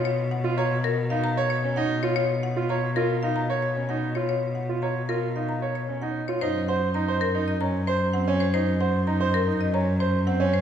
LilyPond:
<<
  \new Staff \with { instrumentName = "Marimba" } { \time 4/4 \key dis \minor \tempo 4 = 113 cis''16 r16 fis''16 r16 ais''16 r16 ais'16 r16 eis''16 ais''16 r16 cis''16 r16 fis''16 r16 cis''16 | cis''16 r16 fis''16 r16 ais''16 r16 ais'16 r16 eis''16 ais''16 r16 cis''16 r16 fis''16 r16 cis''16 | cis''16 r16 fis''16 r16 ais''16 r16 ais'16 r16 eis''16 ais''16 r16 cis''16 r16 fis''16 r16 cis''16 | \key ges \lydian c''16 r16 ges''16 r16 bes''16 r16 bes'16 r16 ees''16 bes''16 r16 c''16 r16 ges''16 r16 c''16 |
c''16 r16 ges''16 r16 bes''16 r16 bes'16 r16 ees''16 bes''16 r16 c''16 r16 ges''16 r16 c''16 | }
  \new Staff \with { instrumentName = "Grand piano" } { \time 4/4 \key dis \minor r8. eis'16 cis''16 r8. dis'16 r16 cis''16 r16 cis'16 dis'16 r16 eis'16 | r8. eis'16 cis''16 r16 eis'16 r16 dis'16 r16 cis''16 r16 cis'16 dis'16 r16 eis'16 | r8. eis'16 cis''16 r16 eis'16 r16 dis'16 r16 cis''16 r16 cis'16 dis'16 r16 eis'16 | \key ges \lydian ees'16 r16 c''16 r16 ees'16 c''16 r16 ees'16 r16 des'16 r16 c''16 r16 c'16 des'16 r16 |
ees'16 r16 c''16 r16 ees'16 c''16 r16 ees'16 r16 des'16 r16 c''16 r16 c'16 des'16 r16 | }
  \new Staff \with { instrumentName = "Cello" } { \clef bass \time 4/4 \key dis \minor b,1~ | b,1~ | b,1 | \key ges \lydian ges,1~ |
ges,1 | }
>>